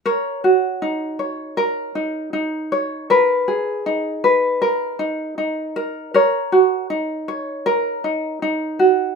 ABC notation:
X:1
M:4/4
L:1/8
Q:"Swing 16ths" 1/4=79
K:F#
V:1 name="Ukulele"
[Ac] F D c A D D c | [AB] G D B A D D A | [Ac] F D c A D D F |]